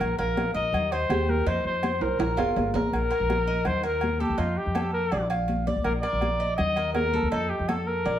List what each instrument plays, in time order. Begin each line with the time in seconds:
Already playing: trumpet A#4, cuban tres A#4
0.00 upright bass A#1, high conga, low agogo
0.18 upright bass A#1, trumpet A#4, cuban tres F5, high conga, low agogo
0.37 high conga, low agogo
0.54 upright bass A#1, cuban tres A#4, trumpet D#5, high conga
0.72 upright bass D#2, high conga, low conga, low agogo
0.92 trumpet C5, cuban tres D#5, high conga, low agogo
1.09 upright bass D#2, cuban tres G4, high conga, low timbale, low agogo
1.29 trumpet A#4, high conga
1.46 upright bass F2, cuban tres D#4, trumpet C5, high conga, low agogo
1.64 upright bass F2, trumpet C5, high conga
1.83 cuban tres C5, high conga, low agogo
2.01 upright bass B1, trumpet A#4, high conga, high timbale
2.19 upright bass A#1, cuban tres A#4, high conga, high timbale, low agogo
2.37 upright bass F1, cuban tres F4, high conga, low timbale, low agogo
2.56 upright bass G1, high conga, low timbale, low agogo
2.74 upright bass A1, cuban tres A#4, high conga, low timbale
2.92 upright bass A#1, trumpet A#4, high conga, low agogo
3.10 cuban tres A#4, high conga, low agogo
3.20 upright bass A#1
3.30 high conga, low agogo
3.47 cuban tres D#5, high conga
3.65 upright bass D#2, trumpet C5, high conga, low conga, low agogo
3.83 cuban tres A#4, trumpet A#4, high conga, low agogo
4.01 high conga, low agogo
4.20 trumpet G4, cuban tres A4, high conga
4.29 upright bass D#2
4.38 upright bass F2, cuban tres D#4, trumpet F4, high conga, low agogo
4.57 trumpet G4, high conga
4.66 upright bass F2
4.75 cuban tres A4, high conga, low agogo
4.93 trumpet A#4, high conga
5.11 upright bass A#1, cuban tres D5, high conga, low agogo
5.30 cuban tres F5, high conga, low agogo
5.48 high conga, low agogo
5.67 cuban tres D5, high conga
5.76 upright bass A#1
5.84 upright bass A#1, trumpet A#4, high conga, low agogo
6.01 cuban tres A#4, trumpet D5, high conga, low agogo
6.13 upright bass A#1
6.21 high conga, low agogo
6.40 cuban tres D#5, high conga
6.57 upright bass D#2, trumpet D#5, high conga, low conga, low agogo
6.76 cuban tres A#4, high conga, low agogo
6.94 trumpet A#4, high conga, low timbale, low agogo
7.13 cuban tres A4, high conga
7.22 upright bass D#2
7.31 upright bass F2, cuban tres D#4, trumpet A4, low agogo
7.49 trumpet G4, high conga
7.59 upright bass F2
7.69 trumpet A4, cuban tres A4, high conga, low agogo
7.87 trumpet A#4, high conga
8.05 upright bass A#1, cuban tres D5, high conga, low agogo